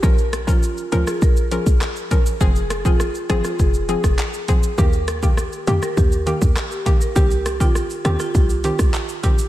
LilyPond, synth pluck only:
\new Staff \with { instrumentName = "Synth pluck" } { \time 4/4 \key bes \dorian \tempo 4 = 101 <f des' bes'>8. <f des' bes'>8. <f des' bes'>8 r8 <f des' bes'>16 r8. <f des' bes'>16 r16 | <f c' aes'>8. <f c' aes'>8. <f c' aes'>8 r8 <f c' aes'>16 r8. <f c' aes'>16 r16 | <ees bes g'>8. <ees bes g'>8. <ees bes g'>8 r8 <ees bes g'>16 r8. <ees bes g'>16 r16 | <ees c' g'>8. <ees c' g'>8. <ees c' g'>8 r8 <ees c' g'>16 r8. <ees c' g'>16 r16 | }